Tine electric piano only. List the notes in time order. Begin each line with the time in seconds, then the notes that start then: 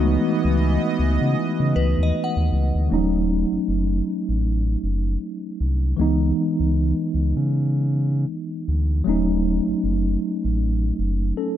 Already playing: E3 G#3 A3 B3 D#4 F#4
2.89 E3 A3 C#4
2.94 F#3 D#4
5.97 E3 G#3 B3
6.01 D#4
9.04 F#3 A3 C#4
9.09 D#4
11.37 C#4 A4